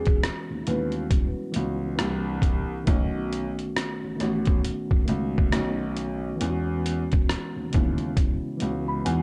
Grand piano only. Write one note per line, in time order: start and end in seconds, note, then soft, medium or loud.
0.50 0.57 D#2 soft
0.68 1.04 D#2 medium
1.56 1.92 C#2 medium
2.00 2.73 C2 loud
2.88 3.47 B1 loud
4.04 4.10 A1 soft
4.21 4.57 A1 medium
5.09 5.45 C#2 medium
5.53 6.26 B1 medium
6.41 7.00 E2 medium
7.56 7.63 D#2 soft
7.75 8.11 D#2 medium
8.62 8.98 C#2 medium
9.06 9.22 E2 medium